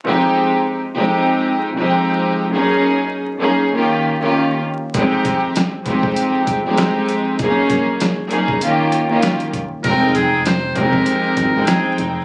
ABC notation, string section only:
X:1
M:4/4
L:1/16
Q:"Swing 16ths" 1/4=98
K:Fm
V:1 name="String section"
[F,,A,CEG]4- [F,,A,CEG] z [F,,A,CEG]4- [F,,A,CEG] [F,,A,CEG]4- [F,,A,CEG] | [_G,,B,DEA]4- [G,,B,DEA] z [G,,B,DEA]2 [E,B,DF=G]3 [E,B,DFG]3 z2 | [F,,A,CEG]4- [F,,A,CEG] z [F,,A,CEG]4- [F,,A,CEG] [F,,A,CEG]4- [F,,A,CEG] | [_G,,B,DEA]4- [G,,B,DEA] z [G,,B,DEA]2 [E,B,DF=G]3 [E,B,DFG]3 z2 |
[F,,A,CEg]4- [F,,A,CEg] z [F,,A,CEG]4- [F,,A,CEG] [F,,A,CEg]4- [F,,A,CEg] |]